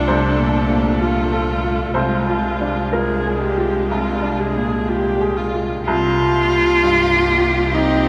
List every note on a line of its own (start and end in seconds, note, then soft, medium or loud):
0.00 0.08 C2 soft
0.00 1.92 C2 medium
0.00 1.98 A#3 soft
0.00 1.00 D4 medium
0.00 1.92 D4 soft
0.00 1.01 F4 soft
0.00 1.94 F4 soft
0.00 1.32 A4 soft
0.00 1.96 A4 soft
0.00 1.98 D5 medium
0.07 1.92 C2 soft
0.07 1.97 A3 soft
0.07 1.92 C5 medium
0.38 0.68 A#2 soft
0.70 1.20 A#2 soft
1.00 1.94 F4 soft
1.00 1.51 F4 soft
1.32 1.83 A4 soft
1.64 1.96 F4 soft
1.94 3.85 C2 soft
1.94 5.82 C2 soft
1.94 5.65 G#3 soft
1.94 5.86 G#3 soft
1.94 5.86 D4 soft
1.94 5.82 F4 soft
1.94 2.81 F4 soft
1.94 2.88 C5 medium
2.29 2.80 F4 soft
2.61 3.12 D4 soft
2.93 3.45 F4 soft
2.93 3.38 G#4 soft
2.93 5.33 A#4 soft
3.26 3.78 G#4 soft
3.41 3.92 G4 soft
3.58 4.10 F4 soft
3.90 5.82 C2 soft
3.90 4.41 F4 soft
4.22 4.75 D4 soft
4.39 4.89 G#4 soft
4.56 5.08 A#2 soft
4.88 5.41 F4 soft
4.88 5.38 G4 soft
5.21 5.73 G#4 soft
5.37 5.86 F4 soft
5.55 5.86 F4 soft
5.84 8.09 C2 medium
5.84 8.09 A#3 soft
5.84 8.09 D#4 medium
5.84 7.76 F4 medium
5.84 8.09 G4 medium
6.83 8.09 G2 soft
7.73 8.09 C4 medium
7.73 8.09 D#4 medium